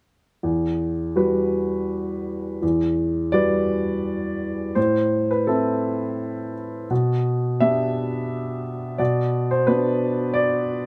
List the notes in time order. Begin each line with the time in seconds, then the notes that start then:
0.43 E2
1.16 G3 F#4 B4
2.62 E2
3.32 G3 F#4 B4 D5
4.75 A2 C5
5.31 B4
5.47 C4 E4 A4
6.90 B2
7.60 B3 D4 G4 E5
8.98 B2 D5
9.51 C5
9.67 B3 D4 F#4 B4
10.34 D5